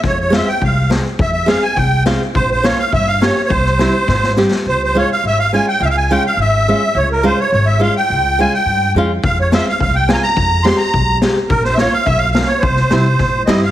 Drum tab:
SD |o-o---o-|--o---o-|--o---oo|-oo-oooo|
BD |o---o---|o---o---|o---o---|o---o---|

SD |--------|--------|--------|--------|
BD |--------|--------|--------|--------|

SD |--o---o-|--o---o-|-oo---oo|-oo-o-oo|
BD |o---o---|o---o---|o---o---|o---o---|